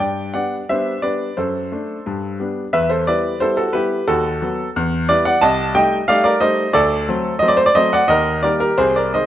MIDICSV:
0, 0, Header, 1, 2, 480
1, 0, Start_track
1, 0, Tempo, 681818
1, 2, Time_signature, 2, 2, 24, 8
1, 1922, Tempo, 671141
1, 5762, Tempo, 696056
1, 6562, End_track
2, 0, Start_track
2, 0, Title_t, "Grand piano"
2, 0, Program_c, 0, 0
2, 0, Note_on_c, 0, 43, 73
2, 0, Note_on_c, 0, 74, 78
2, 0, Note_on_c, 0, 79, 92
2, 226, Note_off_c, 0, 74, 0
2, 234, Note_off_c, 0, 43, 0
2, 236, Note_on_c, 0, 78, 88
2, 240, Note_off_c, 0, 79, 0
2, 240, Note_on_c, 0, 55, 47
2, 243, Note_on_c, 0, 59, 51
2, 244, Note_on_c, 0, 62, 52
2, 246, Note_on_c, 0, 74, 67
2, 384, Note_off_c, 0, 78, 0
2, 416, Note_off_c, 0, 55, 0
2, 418, Note_off_c, 0, 59, 0
2, 419, Note_off_c, 0, 62, 0
2, 470, Note_off_c, 0, 74, 0
2, 488, Note_on_c, 0, 55, 60
2, 489, Note_on_c, 0, 76, 106
2, 492, Note_on_c, 0, 62, 61
2, 493, Note_on_c, 0, 59, 60
2, 495, Note_on_c, 0, 72, 76
2, 661, Note_off_c, 0, 55, 0
2, 664, Note_off_c, 0, 59, 0
2, 664, Note_off_c, 0, 62, 0
2, 704, Note_off_c, 0, 76, 0
2, 715, Note_off_c, 0, 72, 0
2, 720, Note_on_c, 0, 74, 92
2, 723, Note_on_c, 0, 55, 50
2, 726, Note_on_c, 0, 59, 51
2, 727, Note_on_c, 0, 62, 57
2, 728, Note_on_c, 0, 71, 63
2, 897, Note_off_c, 0, 55, 0
2, 899, Note_off_c, 0, 59, 0
2, 900, Note_off_c, 0, 62, 0
2, 951, Note_off_c, 0, 71, 0
2, 963, Note_off_c, 0, 74, 0
2, 964, Note_on_c, 0, 72, 80
2, 965, Note_on_c, 0, 42, 74
2, 976, Note_on_c, 0, 69, 71
2, 1198, Note_off_c, 0, 42, 0
2, 1211, Note_on_c, 0, 57, 57
2, 1215, Note_on_c, 0, 62, 56
2, 1382, Note_off_c, 0, 57, 0
2, 1384, Note_off_c, 0, 62, 0
2, 1452, Note_on_c, 0, 43, 80
2, 1654, Note_off_c, 0, 72, 0
2, 1660, Note_off_c, 0, 69, 0
2, 1680, Note_off_c, 0, 43, 0
2, 1687, Note_on_c, 0, 55, 55
2, 1689, Note_on_c, 0, 59, 57
2, 1694, Note_on_c, 0, 62, 62
2, 1857, Note_off_c, 0, 55, 0
2, 1858, Note_off_c, 0, 59, 0
2, 1861, Note_off_c, 0, 62, 0
2, 1922, Note_on_c, 0, 76, 117
2, 1923, Note_on_c, 0, 40, 83
2, 1927, Note_on_c, 0, 71, 92
2, 2036, Note_off_c, 0, 71, 0
2, 2041, Note_on_c, 0, 72, 95
2, 2042, Note_off_c, 0, 76, 0
2, 2050, Note_on_c, 0, 69, 76
2, 2155, Note_off_c, 0, 40, 0
2, 2158, Note_off_c, 0, 69, 0
2, 2161, Note_off_c, 0, 72, 0
2, 2167, Note_on_c, 0, 74, 107
2, 2172, Note_on_c, 0, 55, 63
2, 2175, Note_on_c, 0, 59, 57
2, 2176, Note_on_c, 0, 71, 77
2, 2178, Note_on_c, 0, 64, 66
2, 2341, Note_off_c, 0, 55, 0
2, 2342, Note_off_c, 0, 59, 0
2, 2345, Note_off_c, 0, 64, 0
2, 2380, Note_off_c, 0, 74, 0
2, 2392, Note_off_c, 0, 71, 0
2, 2403, Note_on_c, 0, 72, 109
2, 2406, Note_on_c, 0, 55, 66
2, 2413, Note_on_c, 0, 64, 66
2, 2414, Note_on_c, 0, 59, 60
2, 2416, Note_on_c, 0, 69, 82
2, 2512, Note_off_c, 0, 69, 0
2, 2522, Note_off_c, 0, 72, 0
2, 2523, Note_on_c, 0, 69, 92
2, 2531, Note_on_c, 0, 66, 72
2, 2577, Note_off_c, 0, 55, 0
2, 2581, Note_off_c, 0, 64, 0
2, 2582, Note_off_c, 0, 59, 0
2, 2637, Note_on_c, 0, 71, 100
2, 2638, Note_off_c, 0, 66, 0
2, 2642, Note_off_c, 0, 69, 0
2, 2643, Note_on_c, 0, 59, 57
2, 2644, Note_on_c, 0, 55, 58
2, 2649, Note_on_c, 0, 67, 77
2, 2650, Note_on_c, 0, 64, 68
2, 2816, Note_off_c, 0, 55, 0
2, 2816, Note_off_c, 0, 59, 0
2, 2820, Note_off_c, 0, 64, 0
2, 2855, Note_off_c, 0, 71, 0
2, 2869, Note_off_c, 0, 67, 0
2, 2884, Note_on_c, 0, 69, 110
2, 2887, Note_on_c, 0, 39, 89
2, 2891, Note_on_c, 0, 66, 93
2, 3119, Note_off_c, 0, 39, 0
2, 3126, Note_off_c, 0, 66, 0
2, 3127, Note_on_c, 0, 54, 62
2, 3132, Note_on_c, 0, 59, 65
2, 3137, Note_on_c, 0, 66, 66
2, 3299, Note_off_c, 0, 54, 0
2, 3302, Note_off_c, 0, 59, 0
2, 3305, Note_off_c, 0, 66, 0
2, 3315, Note_off_c, 0, 69, 0
2, 3376, Note_on_c, 0, 40, 106
2, 3600, Note_off_c, 0, 40, 0
2, 3608, Note_on_c, 0, 74, 122
2, 3611, Note_on_c, 0, 55, 61
2, 3614, Note_on_c, 0, 59, 71
2, 3621, Note_on_c, 0, 64, 66
2, 3621, Note_on_c, 0, 71, 79
2, 3722, Note_off_c, 0, 71, 0
2, 3723, Note_off_c, 0, 74, 0
2, 3727, Note_on_c, 0, 78, 125
2, 3737, Note_on_c, 0, 74, 99
2, 3779, Note_off_c, 0, 55, 0
2, 3780, Note_off_c, 0, 59, 0
2, 3785, Note_off_c, 0, 64, 0
2, 3840, Note_off_c, 0, 74, 0
2, 3842, Note_on_c, 0, 81, 127
2, 3843, Note_off_c, 0, 78, 0
2, 3848, Note_on_c, 0, 36, 99
2, 3851, Note_on_c, 0, 75, 100
2, 4056, Note_off_c, 0, 81, 0
2, 4068, Note_off_c, 0, 75, 0
2, 4076, Note_off_c, 0, 36, 0
2, 4080, Note_on_c, 0, 79, 127
2, 4081, Note_on_c, 0, 55, 70
2, 4081, Note_on_c, 0, 57, 76
2, 4087, Note_on_c, 0, 63, 77
2, 4088, Note_on_c, 0, 75, 94
2, 4223, Note_off_c, 0, 79, 0
2, 4252, Note_off_c, 0, 55, 0
2, 4252, Note_off_c, 0, 57, 0
2, 4256, Note_off_c, 0, 63, 0
2, 4306, Note_off_c, 0, 75, 0
2, 4317, Note_on_c, 0, 77, 127
2, 4320, Note_on_c, 0, 55, 80
2, 4323, Note_on_c, 0, 57, 87
2, 4325, Note_on_c, 0, 63, 87
2, 4327, Note_on_c, 0, 74, 103
2, 4421, Note_off_c, 0, 74, 0
2, 4432, Note_on_c, 0, 74, 116
2, 4437, Note_off_c, 0, 77, 0
2, 4442, Note_on_c, 0, 70, 92
2, 4491, Note_off_c, 0, 55, 0
2, 4493, Note_off_c, 0, 57, 0
2, 4494, Note_off_c, 0, 63, 0
2, 4550, Note_off_c, 0, 70, 0
2, 4550, Note_on_c, 0, 75, 123
2, 4551, Note_on_c, 0, 55, 73
2, 4554, Note_off_c, 0, 74, 0
2, 4554, Note_on_c, 0, 72, 97
2, 4555, Note_on_c, 0, 57, 66
2, 4555, Note_on_c, 0, 63, 79
2, 4725, Note_off_c, 0, 55, 0
2, 4727, Note_off_c, 0, 57, 0
2, 4728, Note_off_c, 0, 63, 0
2, 4777, Note_off_c, 0, 72, 0
2, 4784, Note_on_c, 0, 38, 99
2, 4786, Note_on_c, 0, 74, 126
2, 4792, Note_off_c, 0, 75, 0
2, 4793, Note_on_c, 0, 69, 111
2, 5023, Note_off_c, 0, 38, 0
2, 5037, Note_on_c, 0, 54, 79
2, 5038, Note_on_c, 0, 57, 71
2, 5041, Note_on_c, 0, 60, 77
2, 5068, Note_off_c, 0, 74, 0
2, 5210, Note_off_c, 0, 54, 0
2, 5210, Note_off_c, 0, 57, 0
2, 5212, Note_off_c, 0, 60, 0
2, 5230, Note_off_c, 0, 69, 0
2, 5255, Note_on_c, 0, 75, 121
2, 5275, Note_on_c, 0, 54, 74
2, 5279, Note_on_c, 0, 57, 75
2, 5282, Note_on_c, 0, 60, 86
2, 5321, Note_on_c, 0, 74, 123
2, 5322, Note_off_c, 0, 75, 0
2, 5383, Note_on_c, 0, 72, 127
2, 5387, Note_off_c, 0, 74, 0
2, 5448, Note_on_c, 0, 74, 125
2, 5449, Note_off_c, 0, 54, 0
2, 5450, Note_off_c, 0, 72, 0
2, 5452, Note_off_c, 0, 57, 0
2, 5453, Note_off_c, 0, 60, 0
2, 5513, Note_on_c, 0, 75, 127
2, 5515, Note_off_c, 0, 74, 0
2, 5515, Note_on_c, 0, 54, 75
2, 5520, Note_on_c, 0, 57, 73
2, 5520, Note_on_c, 0, 72, 92
2, 5521, Note_on_c, 0, 60, 83
2, 5632, Note_off_c, 0, 72, 0
2, 5636, Note_off_c, 0, 75, 0
2, 5640, Note_on_c, 0, 78, 123
2, 5646, Note_on_c, 0, 74, 100
2, 5691, Note_off_c, 0, 54, 0
2, 5694, Note_off_c, 0, 57, 0
2, 5695, Note_off_c, 0, 60, 0
2, 5748, Note_on_c, 0, 75, 127
2, 5752, Note_on_c, 0, 39, 96
2, 5756, Note_off_c, 0, 74, 0
2, 5761, Note_off_c, 0, 78, 0
2, 5761, Note_on_c, 0, 70, 93
2, 5967, Note_off_c, 0, 75, 0
2, 5981, Note_off_c, 0, 70, 0
2, 5986, Note_off_c, 0, 39, 0
2, 5987, Note_on_c, 0, 74, 104
2, 5992, Note_on_c, 0, 51, 65
2, 5994, Note_on_c, 0, 55, 71
2, 5996, Note_on_c, 0, 58, 70
2, 5998, Note_on_c, 0, 70, 80
2, 6099, Note_off_c, 0, 70, 0
2, 6109, Note_on_c, 0, 70, 103
2, 6112, Note_off_c, 0, 74, 0
2, 6116, Note_on_c, 0, 67, 70
2, 6167, Note_off_c, 0, 51, 0
2, 6168, Note_off_c, 0, 55, 0
2, 6169, Note_off_c, 0, 58, 0
2, 6228, Note_off_c, 0, 67, 0
2, 6229, Note_on_c, 0, 72, 121
2, 6230, Note_on_c, 0, 36, 89
2, 6233, Note_off_c, 0, 70, 0
2, 6235, Note_on_c, 0, 68, 96
2, 6348, Note_off_c, 0, 68, 0
2, 6354, Note_off_c, 0, 72, 0
2, 6355, Note_on_c, 0, 74, 95
2, 6365, Note_on_c, 0, 70, 76
2, 6468, Note_off_c, 0, 36, 0
2, 6474, Note_off_c, 0, 70, 0
2, 6478, Note_off_c, 0, 74, 0
2, 6479, Note_on_c, 0, 51, 57
2, 6479, Note_on_c, 0, 75, 109
2, 6483, Note_on_c, 0, 56, 60
2, 6485, Note_on_c, 0, 60, 62
2, 6485, Note_on_c, 0, 72, 77
2, 6562, Note_off_c, 0, 51, 0
2, 6562, Note_off_c, 0, 56, 0
2, 6562, Note_off_c, 0, 60, 0
2, 6562, Note_off_c, 0, 72, 0
2, 6562, Note_off_c, 0, 75, 0
2, 6562, End_track
0, 0, End_of_file